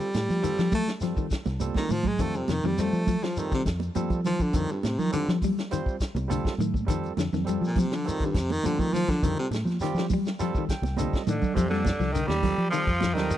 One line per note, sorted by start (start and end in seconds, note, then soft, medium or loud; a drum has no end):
0.00 0.74 G3 medium
0.00 closed hi-hat soft
0.00 shekere soft
0.14 0.26 A2 medium
0.14 snare medium
0.14 closed hi-hat medium
0.14 high conga medium
0.14 shekere medium
0.29 0.41 F3 medium
0.29 snare soft
0.29 closed hi-hat soft
0.29 high conga medium
0.29 shekere soft
0.42 0.52 D#3 medium
0.42 0.67 G3 medium
0.42 0.67 C4 medium
0.42 0.67 F4 medium
0.42 0.67 A4 medium
0.42 closed hi-hat medium
0.42 shekere medium
0.58 0.67 F3 medium
0.58 0.82 F3 medium
0.58 snare medium
0.58 shekere soft
0.72 0.90 A3 medium
0.72 0.92 A3 loud
0.72 kick medium
0.72 open hi-hat medium
0.72 high conga medium
0.72 low conga medium
0.72 shekere medium
0.87 snare medium
0.87 closed hi-hat soft
0.87 shekere soft
1.01 1.11 F3 medium
1.01 1.26 G3 medium
1.01 1.25 C4 medium
1.01 1.26 F4 medium
1.01 1.26 A4 medium
1.01 snare soft
1.01 closed hi-hat medium
1.01 shekere medium
1.17 1.35 D#3 medium
1.17 kick medium
1.17 shekere soft
1.31 kick medium
1.31 snare medium
1.31 closed hi-hat medium
1.31 shekere medium
1.46 1.69 C2 medium
1.46 snare soft
1.46 closed hi-hat soft
1.46 high conga medium
1.46 shekere soft
1.60 1.84 G3 medium
1.60 1.85 C4 medium
1.60 1.85 F4 medium
1.60 1.85 A4 medium
1.60 closed hi-hat medium
1.60 high conga medium
1.60 shekere medium
1.74 1.93 D#3 medium
1.74 kick medium
1.74 snare medium
1.74 high conga medium
1.74 shekere soft
1.89 2.19 A2 medium
1.89 2.08 D#3 medium
1.89 2.09 F3 loud
1.89 closed hi-hat medium
1.89 low conga medium
1.89 shekere medium
2.03 2.23 G#3 medium
2.03 kick medium
2.03 low conga loud
2.03 shekere soft
2.19 2.42 F2 loud
2.19 2.37 D#3 medium
2.19 2.43 G3 medium
2.19 2.38 A3 loud
2.19 2.44 C4 medium
2.19 2.44 F4 medium
2.19 2.44 A4 medium
2.19 kick medium
2.19 closed hi-hat medium
2.19 shekere medium
2.34 2.52 C3 medium
2.34 closed hi-hat soft
2.34 shekere soft
2.48 2.60 F2 medium
2.48 2.58 C3 medium
2.48 2.68 D#3 medium
2.48 snare medium
2.48 closed hi-hat soft
2.48 high conga medium
2.48 shekere medium
2.63 2.87 F2 medium
2.63 2.73 D#3 medium
2.63 2.83 G3 medium
2.63 closed hi-hat soft
2.63 high conga medium
2.63 low conga medium
2.63 shekere soft
2.77 3.02 G3 medium
2.77 2.96 G3 medium
2.77 3.26 A3 loud
2.77 3.02 C4 medium
2.77 3.02 F4 medium
2.77 3.02 C5 medium
2.77 snare soft
2.77 closed hi-hat medium
2.77 shekere medium
2.93 3.16 F3 medium
2.93 shekere soft
3.07 3.17 F3 medium
3.07 kick medium
3.07 open hi-hat medium
3.07 high conga medium
3.07 low conga medium
3.07 shekere medium
3.22 3.40 F3 medium
3.22 3.41 F3 medium
3.22 snare medium
3.22 closed hi-hat soft
3.22 shekere soft
3.37 3.53 D#3 medium
3.37 3.61 G3 medium
3.37 3.61 C4 medium
3.37 3.61 F4 medium
3.37 3.62 A4 medium
3.37 closed hi-hat medium
3.37 shekere medium
3.52 3.62 C3 medium
3.52 3.69 D#3 medium
3.52 kick medium
3.52 snare soft
3.52 closed hi-hat soft
3.52 shekere soft
3.65 3.89 F2 medium
3.65 kick medium
3.65 snare medium
3.65 closed hi-hat medium
3.65 shekere medium
3.80 closed hi-hat soft
3.80 high conga medium
3.80 shekere soft
3.95 4.13 F3 medium
3.95 4.19 G3 medium
3.95 4.19 C4 medium
3.95 4.20 F4 medium
3.95 4.20 A4 loud
3.95 closed hi-hat medium
3.95 high conga medium
3.95 shekere medium
4.10 4.33 F3 medium
4.10 kick medium
4.10 closed hi-hat soft
4.10 shekere soft
4.25 4.43 D#3 medium
4.25 4.44 F3 loud
4.25 closed hi-hat soft
4.25 low conga medium
4.25 shekere medium
4.39 4.58 D3 medium
4.39 4.50 F3 medium
4.39 kick medium
4.39 closed hi-hat soft
4.39 shekere soft
4.53 4.66 F2 loud
4.53 4.72 D3 medium
4.53 4.73 D#3 loud
4.53 4.77 G3 medium
4.53 4.77 C4 medium
4.53 4.78 F4 medium
4.53 4.78 A4 medium
4.53 kick medium
4.53 closed hi-hat medium
4.53 shekere medium
4.69 4.86 G2 medium
4.69 closed hi-hat soft
4.69 shekere soft
4.83 4.95 A2 medium
4.83 5.00 C3 medium
4.83 snare medium
4.83 closed hi-hat medium
4.83 high conga loud
4.83 shekere medium
4.99 5.12 D#3 loud
4.99 5.10 F3 medium
4.99 snare soft
4.99 closed hi-hat soft
4.99 low conga medium
4.99 shekere soft
5.11 5.30 D3 loud
5.11 5.23 D#3 medium
5.11 5.36 G3 medium
5.11 5.36 C4 medium
5.11 5.36 F4 medium
5.11 5.36 A4 medium
5.11 closed hi-hat medium
5.11 shekere medium
5.28 5.51 F3 medium
5.28 5.38 F3 medium
5.28 snare medium
5.28 shekere soft
5.42 5.61 G3 medium
5.42 kick medium
5.42 open hi-hat medium
5.42 high conga medium
5.42 low conga medium
5.42 shekere medium
5.58 snare medium
5.58 closed hi-hat soft
5.58 shekere soft
5.71 5.81 D#3 medium
5.71 5.95 G3 medium
5.71 5.95 C4 medium
5.71 5.95 F4 medium
5.71 5.96 C5 loud
5.71 closed hi-hat medium
5.71 shekere medium
5.86 kick medium
5.86 shekere soft
6.00 kick medium
6.00 snare medium
6.00 closed hi-hat medium
6.00 shekere medium
6.15 6.38 C2 medium
6.15 closed hi-hat soft
6.15 high conga medium
6.15 shekere soft
6.28 6.48 D3 medium
6.28 6.53 G3 medium
6.28 6.53 C4 medium
6.28 6.53 F4 medium
6.28 6.54 A4 loud
6.28 closed hi-hat medium
6.28 high conga medium
6.28 shekere medium
6.45 kick medium
6.45 snare medium
6.45 shekere soft
6.58 6.88 A2 medium
6.58 6.77 D#3 medium
6.58 closed hi-hat medium
6.58 low conga medium
6.58 shekere medium
6.74 kick medium
6.74 high conga medium
6.74 shekere soft
6.87 7.11 F2 loud
6.87 7.06 D#3 medium
6.87 7.11 G3 medium
6.87 7.12 C4 medium
6.87 7.12 F4 medium
6.87 7.12 A4 loud
6.87 kick medium
6.87 closed hi-hat medium
6.87 shekere medium
7.03 closed hi-hat soft
7.03 shekere soft
7.17 7.29 F2 medium
7.17 7.27 D3 medium
7.17 snare medium
7.17 closed hi-hat medium
7.17 high conga loud
7.17 shekere medium
7.33 7.56 F2 medium
7.33 7.42 D#3 medium
7.33 snare soft
7.33 closed hi-hat soft
7.33 low conga medium
7.33 shekere soft
7.45 7.70 G3 medium
7.45 7.70 C4 medium
7.45 7.71 F4 medium
7.45 7.71 A4 medium
7.45 closed hi-hat medium
7.45 shekere medium
7.49 7.66 G3 medium
7.61 7.84 F3 medium
7.61 shekere soft
7.66 7.81 A#2 medium
7.75 7.86 F3 medium
7.75 kick medium
7.75 open hi-hat medium
7.75 high conga medium
7.75 low conga medium
7.75 shekere medium
7.80 7.96 C3 medium
7.90 8.10 F3 medium
7.90 snare medium
7.90 closed hi-hat soft
7.90 shekere soft
7.95 8.09 D3 medium
8.04 8.27 D#3 loud
8.04 8.29 G3 medium
8.04 8.29 C4 medium
8.04 8.29 F4 medium
8.04 8.30 A4 medium
8.04 closed hi-hat medium
8.08 shekere medium
8.20 8.39 D#3 medium
8.20 kick medium
8.20 closed hi-hat soft
8.20 shekere soft
8.25 8.39 G2 medium
8.34 8.57 F2 medium
8.34 8.53 C3 loud
8.34 kick medium
8.34 snare medium
8.34 closed hi-hat medium
8.34 shekere medium
8.49 8.68 D#3 loud
8.49 closed hi-hat soft
8.49 high conga loud
8.49 shekere soft
8.63 8.82 D3 loud
8.63 8.82 F3 medium
8.63 8.87 G3 medium
8.63 8.88 C4 medium
8.63 8.88 F4 medium
8.63 8.88 A4 medium
8.63 closed hi-hat medium
8.63 high conga medium
8.63 shekere medium
8.79 8.95 D#3 loud
8.79 9.02 F3 loud
8.79 kick medium
8.79 closed hi-hat soft
8.79 high conga medium
8.79 shekere soft
8.93 9.12 D#3 medium
8.93 9.11 F3 loud
8.93 closed hi-hat soft
8.93 high conga medium
8.93 low conga medium
8.93 shekere medium
9.08 9.25 D3 loud
9.08 9.20 F3 loud
9.08 kick medium
9.08 snare soft
9.08 closed hi-hat soft
9.08 shekere soft
9.23 9.34 F2 loud
9.23 9.41 D3 medium
9.23 9.38 D#3 loud
9.23 9.47 G3 medium
9.23 9.47 C4 medium
9.23 9.47 F4 medium
9.23 9.47 A4 medium
9.23 kick medium
9.23 closed hi-hat medium
9.23 shekere medium
9.39 9.47 C3 medium
9.39 closed hi-hat soft
9.39 shekere soft
9.51 9.63 A2 medium
9.51 snare medium
9.51 closed hi-hat medium
9.51 high conga loud
9.51 shekere medium
9.65 9.77 F3 medium
9.65 closed hi-hat soft
9.65 high conga medium
9.65 shekere soft
9.69 snare soft
9.80 9.91 D#3 medium
9.80 10.05 G3 loud
9.80 10.05 C4 medium
9.80 10.05 F4 medium
9.80 10.05 G4 loud
9.80 snare soft
9.80 closed hi-hat medium
9.80 shekere medium
9.94 10.18 F3 medium
9.94 snare medium
9.94 shekere soft
9.99 10.07 F3 medium
10.10 10.29 G3 medium
10.10 kick medium
10.10 open hi-hat medium
10.10 high conga medium
10.10 low conga medium
10.10 shekere medium
10.25 snare medium
10.25 closed hi-hat soft
10.25 shekere soft
10.39 10.50 F3 medium
10.39 10.63 G3 loud
10.39 10.64 C4 medium
10.39 10.64 F4 medium
10.39 10.64 A4 loud
10.39 snare soft
10.39 closed hi-hat medium
10.39 shekere medium
10.55 10.74 D#3 medium
10.55 kick medium
10.55 shekere soft
10.69 10.97 G5 medium
10.69 kick medium
10.69 snare medium
10.69 closed hi-hat medium
10.69 shekere medium
10.82 11.05 C2 medium
10.82 closed hi-hat soft
10.82 high conga medium
10.82 shekere soft
10.86 snare soft
10.97 11.17 D3 medium
10.97 11.21 G3 medium
10.97 11.21 C4 medium
10.97 11.21 F4 medium
10.97 11.22 A4 loud
10.97 11.52 D#5 medium
10.97 closed hi-hat medium
10.97 high conga medium
10.97 shekere medium
11.13 kick medium
11.13 snare medium
11.13 shekere soft
11.27 11.39 A2 medium
11.27 11.57 D3 medium
11.27 11.45 D#3 medium
11.27 11.57 D4 medium
11.27 closed hi-hat medium
11.27 low conga medium
11.27 shekere medium
11.42 kick medium
11.42 low conga loud
11.42 shekere soft
11.55 11.91 F2 loud
11.55 11.69 C3 medium
11.55 11.66 F3 medium
11.55 11.91 G3 medium
11.55 11.68 C4 medium
11.55 11.91 C4 medium
11.55 11.92 F4 medium
11.55 11.92 A4 medium
11.55 kick loud
11.55 snare soft
11.55 closed hi-hat medium
11.55 low conga medium
11.55 shekere medium
11.68 12.14 D3 medium
11.68 11.88 G3 medium
11.68 12.14 D4 medium
11.68 closed hi-hat soft
11.68 high conga medium
11.73 snare soft
11.85 kick medium
11.85 snare medium
11.85 closed hi-hat medium
11.85 high conga loud
11.85 shekere medium
11.99 12.23 C2 medium
11.99 12.09 F3 medium
11.99 snare soft
11.99 shekere soft
12.13 12.32 D3 medium
12.13 12.29 D#3 loud
12.13 12.29 D#4 medium
12.13 closed hi-hat medium
12.13 shekere medium
12.27 12.52 D#2 loud
12.27 12.70 G3 loud
12.27 12.70 G4 loud
12.27 snare medium
12.27 closed hi-hat soft
12.27 high conga medium
12.43 12.55 G3 medium
12.43 12.55 C4 medium
12.43 12.55 F4 medium
12.43 12.56 A4 medium
12.43 kick medium
12.43 snare soft
12.43 open hi-hat medium
12.43 low conga medium
12.43 shekere soft
12.58 12.69 F3 medium
12.58 closed hi-hat soft
12.70 12.90 D#3 medium
12.70 13.15 F3 loud
12.70 12.90 G3 medium
12.70 12.90 C4 medium
12.70 13.17 F4 loud
12.70 12.90 F4 medium
12.70 12.90 A4 medium
12.70 closed hi-hat medium
12.70 shekere medium
12.87 13.15 F2 medium
12.87 kick medium
12.87 closed hi-hat soft
13.01 13.19 F3 medium
13.01 snare medium
13.01 closed hi-hat medium
13.01 high conga loud
13.01 shekere medium
13.13 13.38 D#2 medium
13.13 13.38 D#3 loud
13.13 13.33 G3 medium
13.13 13.33 C4 medium
13.13 13.38 D#4 medium
13.13 13.34 F4 medium
13.13 13.34 A4 medium
13.13 closed hi-hat soft
13.13 low conga medium
13.17 snare medium
13.17 shekere soft
13.31 muted clean electric guitar stroke medium
13.31 closed hi-hat medium
13.31 shekere medium